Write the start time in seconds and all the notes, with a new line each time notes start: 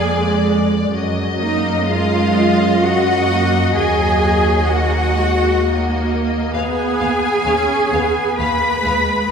Already playing: F2 G#4 D5 G#5
0.00 G#3
0.93 F#2 F#3 D#5
1.40 A#3 D#4 D#5
1.87 G#3 F4 F5
2.82 F#3 F#4 F#5
3.29 A#3
3.74 D#2 F#3 G#4 G#5
4.68 A#3 F#4 F#5
5.14 G#3
5.62 A#3
6.53 D#2 B3 G#4 F5 G#5
6.99 D#2 F5
7.46 D#2 C#4 F5
7.92 D#2 B3 F5
8.39 D#2 A#3 B4 F5 B5
8.85 D#2 G#3 F5